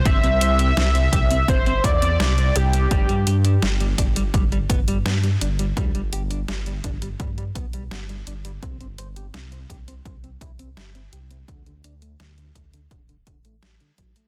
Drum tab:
HH |xxxxxxxxxxxxxxxx|xxxxxxxxxxxxxxxx|xxxxxxxxxxxxxxxx|xxxxxxxxxxxxxxxx|
SD |----o-------o---|----o-------o---|----o-------o---|----o-------o---|
BD |o-----o-o-o-----|o-----o-o-o-----|o-----o-o-o-----|o-----o-o-o-----|

HH |xxxxxxxxxxxxxxxx|
SD |----o-------o---|
BD |o-----o-o-o---o-|